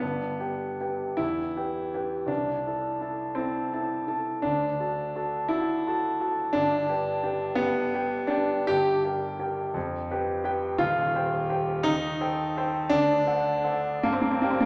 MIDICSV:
0, 0, Header, 1, 2, 480
1, 0, Start_track
1, 0, Key_signature, 1, "major"
1, 0, Tempo, 776197
1, 8, Time_signature, 6, 3, 24, 8
1, 969, Tempo, 722022
1, 1449, Tempo, 717703
1, 3369, Tempo, 693642
1, 4809, Tempo, 729927
1, 5769, Key_signature, -2, "minor"
1, 5769, Tempo, 703400
1, 8649, Tempo, 752823
1, 9755, End_track
2, 0, Start_track
2, 0, Title_t, "Grand piano"
2, 0, Program_c, 0, 0
2, 0, Control_c, 0, 64, 127
2, 0, Note_on_c, 0, 59, 76
2, 4, Note_on_c, 0, 31, 48
2, 10, Note_on_c, 0, 43, 47
2, 21, Control_c, 0, 64, 0
2, 113, Control_c, 0, 64, 127
2, 235, Note_off_c, 0, 31, 0
2, 238, Note_off_c, 0, 43, 0
2, 246, Note_on_c, 0, 67, 38
2, 250, Note_on_c, 0, 71, 32
2, 251, Note_on_c, 0, 79, 41
2, 467, Note_off_c, 0, 67, 0
2, 470, Note_off_c, 0, 71, 0
2, 470, Note_off_c, 0, 79, 0
2, 498, Note_on_c, 0, 71, 34
2, 501, Note_on_c, 0, 67, 39
2, 503, Note_on_c, 0, 79, 39
2, 715, Note_off_c, 0, 71, 0
2, 717, Note_off_c, 0, 67, 0
2, 718, Note_off_c, 0, 79, 0
2, 723, Note_on_c, 0, 64, 85
2, 730, Note_off_c, 0, 59, 0
2, 734, Note_on_c, 0, 40, 48
2, 750, Control_c, 0, 64, 0
2, 856, Control_c, 0, 64, 127
2, 961, Note_off_c, 0, 40, 0
2, 966, Note_on_c, 0, 67, 35
2, 968, Note_on_c, 0, 71, 38
2, 973, Note_on_c, 0, 79, 39
2, 1185, Note_off_c, 0, 67, 0
2, 1186, Note_off_c, 0, 71, 0
2, 1189, Note_off_c, 0, 79, 0
2, 1218, Note_on_c, 0, 67, 39
2, 1219, Note_on_c, 0, 79, 41
2, 1221, Note_on_c, 0, 71, 42
2, 1429, Note_off_c, 0, 67, 0
2, 1430, Note_off_c, 0, 79, 0
2, 1430, Note_on_c, 0, 36, 48
2, 1431, Note_off_c, 0, 71, 0
2, 1441, Note_on_c, 0, 62, 75
2, 1442, Note_off_c, 0, 64, 0
2, 1463, Control_c, 0, 64, 0
2, 1573, Control_c, 0, 64, 127
2, 1671, Note_off_c, 0, 36, 0
2, 1701, Note_on_c, 0, 64, 33
2, 1704, Note_on_c, 0, 69, 34
2, 1709, Note_on_c, 0, 81, 36
2, 1912, Note_off_c, 0, 64, 0
2, 1914, Note_off_c, 0, 69, 0
2, 1917, Note_off_c, 0, 81, 0
2, 1931, Note_on_c, 0, 64, 41
2, 1935, Note_on_c, 0, 69, 38
2, 1939, Note_on_c, 0, 81, 40
2, 2147, Note_off_c, 0, 64, 0
2, 2149, Note_off_c, 0, 69, 0
2, 2151, Note_off_c, 0, 81, 0
2, 2158, Note_on_c, 0, 60, 73
2, 2167, Note_off_c, 0, 62, 0
2, 2170, Note_on_c, 0, 64, 41
2, 2172, Note_on_c, 0, 69, 42
2, 2175, Note_on_c, 0, 81, 44
2, 2385, Note_off_c, 0, 64, 0
2, 2386, Note_off_c, 0, 69, 0
2, 2388, Note_off_c, 0, 81, 0
2, 2416, Note_on_c, 0, 64, 44
2, 2417, Note_on_c, 0, 69, 42
2, 2417, Note_on_c, 0, 81, 46
2, 2628, Note_off_c, 0, 64, 0
2, 2628, Note_off_c, 0, 69, 0
2, 2628, Note_off_c, 0, 81, 0
2, 2643, Note_on_c, 0, 64, 41
2, 2646, Note_on_c, 0, 69, 42
2, 2648, Note_on_c, 0, 81, 48
2, 2862, Note_off_c, 0, 64, 0
2, 2863, Note_off_c, 0, 69, 0
2, 2865, Note_off_c, 0, 81, 0
2, 2876, Note_on_c, 0, 62, 86
2, 2882, Note_off_c, 0, 60, 0
2, 2884, Note_on_c, 0, 38, 57
2, 2900, Control_c, 0, 64, 0
2, 3031, Control_c, 0, 64, 127
2, 3120, Note_off_c, 0, 38, 0
2, 3129, Note_on_c, 0, 66, 33
2, 3130, Note_on_c, 0, 81, 43
2, 3133, Note_on_c, 0, 69, 37
2, 3344, Note_off_c, 0, 66, 0
2, 3345, Note_off_c, 0, 81, 0
2, 3346, Note_off_c, 0, 69, 0
2, 3367, Note_on_c, 0, 66, 39
2, 3368, Note_on_c, 0, 69, 41
2, 3371, Note_on_c, 0, 81, 42
2, 3587, Note_off_c, 0, 66, 0
2, 3588, Note_off_c, 0, 69, 0
2, 3590, Note_off_c, 0, 81, 0
2, 3594, Note_on_c, 0, 64, 90
2, 3605, Note_on_c, 0, 66, 44
2, 3606, Note_off_c, 0, 62, 0
2, 3610, Note_on_c, 0, 69, 45
2, 3612, Note_on_c, 0, 81, 49
2, 3826, Note_off_c, 0, 66, 0
2, 3829, Note_off_c, 0, 69, 0
2, 3830, Note_off_c, 0, 81, 0
2, 3861, Note_on_c, 0, 66, 44
2, 3864, Note_on_c, 0, 69, 44
2, 3868, Note_on_c, 0, 81, 50
2, 4075, Note_off_c, 0, 66, 0
2, 4077, Note_off_c, 0, 69, 0
2, 4079, Note_off_c, 0, 81, 0
2, 4090, Note_on_c, 0, 66, 42
2, 4095, Note_on_c, 0, 69, 46
2, 4101, Note_on_c, 0, 81, 48
2, 4307, Note_off_c, 0, 66, 0
2, 4310, Note_off_c, 0, 69, 0
2, 4313, Note_off_c, 0, 81, 0
2, 4315, Note_on_c, 0, 62, 100
2, 4321, Note_on_c, 0, 31, 53
2, 4322, Note_on_c, 0, 43, 61
2, 4325, Note_off_c, 0, 64, 0
2, 4346, Control_c, 0, 64, 0
2, 4458, Control_c, 0, 64, 127
2, 4556, Note_off_c, 0, 31, 0
2, 4557, Note_off_c, 0, 43, 0
2, 4563, Note_on_c, 0, 67, 38
2, 4564, Note_on_c, 0, 71, 45
2, 4569, Note_on_c, 0, 79, 45
2, 4780, Note_off_c, 0, 67, 0
2, 4781, Note_off_c, 0, 71, 0
2, 4784, Note_off_c, 0, 79, 0
2, 4805, Note_on_c, 0, 67, 42
2, 4805, Note_on_c, 0, 71, 41
2, 4807, Note_on_c, 0, 79, 45
2, 5014, Note_off_c, 0, 67, 0
2, 5014, Note_off_c, 0, 71, 0
2, 5014, Note_off_c, 0, 79, 0
2, 5015, Note_on_c, 0, 59, 100
2, 5026, Note_on_c, 0, 67, 47
2, 5029, Note_off_c, 0, 62, 0
2, 5030, Note_on_c, 0, 71, 49
2, 5036, Note_on_c, 0, 79, 49
2, 5246, Note_off_c, 0, 67, 0
2, 5248, Note_off_c, 0, 71, 0
2, 5251, Note_off_c, 0, 79, 0
2, 5269, Note_on_c, 0, 67, 51
2, 5271, Note_on_c, 0, 71, 50
2, 5276, Note_on_c, 0, 79, 53
2, 5488, Note_on_c, 0, 62, 92
2, 5494, Note_off_c, 0, 71, 0
2, 5495, Note_off_c, 0, 67, 0
2, 5498, Note_off_c, 0, 79, 0
2, 5504, Note_on_c, 0, 71, 52
2, 5505, Note_on_c, 0, 67, 50
2, 5508, Note_on_c, 0, 79, 56
2, 5513, Note_off_c, 0, 59, 0
2, 5733, Note_off_c, 0, 71, 0
2, 5734, Note_off_c, 0, 67, 0
2, 5735, Note_off_c, 0, 79, 0
2, 5750, Note_off_c, 0, 62, 0
2, 5750, Note_on_c, 0, 67, 109
2, 5755, Note_on_c, 0, 31, 59
2, 5764, Note_on_c, 0, 43, 56
2, 5782, Control_c, 0, 64, 0
2, 5892, Control_c, 0, 64, 127
2, 5994, Note_off_c, 0, 67, 0
2, 5996, Note_off_c, 0, 31, 0
2, 6001, Note_off_c, 0, 43, 0
2, 6004, Note_on_c, 0, 67, 46
2, 6009, Note_on_c, 0, 79, 50
2, 6010, Note_on_c, 0, 70, 41
2, 6221, Note_off_c, 0, 67, 0
2, 6224, Note_off_c, 0, 70, 0
2, 6224, Note_off_c, 0, 79, 0
2, 6242, Note_on_c, 0, 67, 51
2, 6244, Note_on_c, 0, 70, 42
2, 6246, Note_on_c, 0, 79, 55
2, 6459, Note_off_c, 0, 67, 0
2, 6461, Note_off_c, 0, 70, 0
2, 6462, Note_off_c, 0, 79, 0
2, 6480, Note_on_c, 0, 41, 67
2, 6498, Control_c, 0, 64, 0
2, 6613, Control_c, 0, 64, 127
2, 6716, Note_off_c, 0, 41, 0
2, 6732, Note_on_c, 0, 67, 52
2, 6732, Note_on_c, 0, 71, 54
2, 6734, Note_on_c, 0, 79, 51
2, 6945, Note_off_c, 0, 71, 0
2, 6946, Note_off_c, 0, 67, 0
2, 6946, Note_off_c, 0, 79, 0
2, 6957, Note_on_c, 0, 67, 55
2, 6957, Note_on_c, 0, 71, 52
2, 6964, Note_on_c, 0, 79, 60
2, 7178, Note_off_c, 0, 67, 0
2, 7178, Note_off_c, 0, 71, 0
2, 7182, Note_off_c, 0, 79, 0
2, 7191, Note_on_c, 0, 65, 102
2, 7194, Note_on_c, 0, 27, 63
2, 7202, Note_on_c, 0, 39, 71
2, 7220, Control_c, 0, 64, 0
2, 7321, Control_c, 0, 64, 127
2, 7434, Note_off_c, 0, 27, 0
2, 7438, Note_off_c, 0, 39, 0
2, 7445, Note_on_c, 0, 67, 49
2, 7445, Note_on_c, 0, 72, 52
2, 7449, Note_on_c, 0, 79, 55
2, 7661, Note_off_c, 0, 67, 0
2, 7661, Note_off_c, 0, 72, 0
2, 7663, Note_off_c, 0, 79, 0
2, 7676, Note_on_c, 0, 72, 47
2, 7678, Note_on_c, 0, 67, 55
2, 7679, Note_on_c, 0, 79, 55
2, 7895, Note_off_c, 0, 72, 0
2, 7896, Note_off_c, 0, 67, 0
2, 7897, Note_off_c, 0, 79, 0
2, 7907, Note_on_c, 0, 63, 117
2, 7915, Note_on_c, 0, 39, 77
2, 7916, Note_off_c, 0, 65, 0
2, 7936, Control_c, 0, 64, 0
2, 8059, Control_c, 0, 64, 127
2, 8152, Note_off_c, 0, 39, 0
2, 8161, Note_on_c, 0, 69, 55
2, 8162, Note_on_c, 0, 72, 53
2, 8168, Note_on_c, 0, 79, 60
2, 8380, Note_off_c, 0, 69, 0
2, 8380, Note_off_c, 0, 72, 0
2, 8384, Note_off_c, 0, 79, 0
2, 8397, Note_off_c, 0, 63, 0
2, 8408, Note_on_c, 0, 69, 53
2, 8413, Note_on_c, 0, 79, 62
2, 8415, Note_on_c, 0, 72, 60
2, 8626, Note_off_c, 0, 69, 0
2, 8628, Note_off_c, 0, 79, 0
2, 8629, Note_off_c, 0, 72, 0
2, 8631, Note_on_c, 0, 62, 124
2, 8645, Note_on_c, 0, 38, 74
2, 8659, Control_c, 0, 64, 0
2, 8762, Control_c, 0, 64, 127
2, 8863, Note_on_c, 0, 69, 46
2, 8871, Note_off_c, 0, 38, 0
2, 8871, Note_on_c, 0, 72, 47
2, 8874, Note_on_c, 0, 78, 56
2, 9083, Note_off_c, 0, 69, 0
2, 9088, Note_off_c, 0, 72, 0
2, 9089, Note_off_c, 0, 78, 0
2, 9107, Note_on_c, 0, 69, 49
2, 9109, Note_on_c, 0, 72, 45
2, 9111, Note_on_c, 0, 78, 53
2, 9327, Note_off_c, 0, 69, 0
2, 9328, Note_off_c, 0, 72, 0
2, 9330, Note_off_c, 0, 78, 0
2, 9349, Note_off_c, 0, 62, 0
2, 9358, Note_on_c, 0, 58, 95
2, 9359, Note_on_c, 0, 43, 72
2, 9371, Control_c, 0, 64, 0
2, 9415, Note_off_c, 0, 58, 0
2, 9418, Note_on_c, 0, 60, 85
2, 9474, Note_off_c, 0, 60, 0
2, 9474, Control_c, 0, 64, 127
2, 9474, Note_on_c, 0, 58, 82
2, 9532, Note_off_c, 0, 58, 0
2, 9538, Note_on_c, 0, 60, 76
2, 9593, Note_off_c, 0, 60, 0
2, 9596, Note_off_c, 0, 43, 0
2, 9603, Note_on_c, 0, 58, 85
2, 9616, Note_on_c, 0, 79, 53
2, 9618, Note_on_c, 0, 67, 49
2, 9619, Note_on_c, 0, 74, 45
2, 9655, Note_off_c, 0, 58, 0
2, 9659, Note_on_c, 0, 60, 81
2, 9713, Note_off_c, 0, 60, 0
2, 9723, Note_on_c, 0, 58, 87
2, 9755, Note_off_c, 0, 58, 0
2, 9755, Note_off_c, 0, 67, 0
2, 9755, Note_off_c, 0, 74, 0
2, 9755, Note_off_c, 0, 79, 0
2, 9755, End_track
0, 0, End_of_file